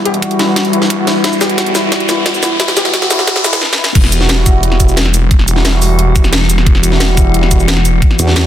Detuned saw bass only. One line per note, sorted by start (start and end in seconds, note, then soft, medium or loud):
0.00 0.21 E1 medium
0.39 0.89 B1 loud
0.90 1.23 F#1 loud
1.24 1.40 E1 loud
1.41 1.91 B1 medium
2.09 2.92 E1 loud
3.11 3.60 E1 medium
3.95 5.30 E1 loud
5.31 6.65 E1 loud
6.66 8.01 E1 loud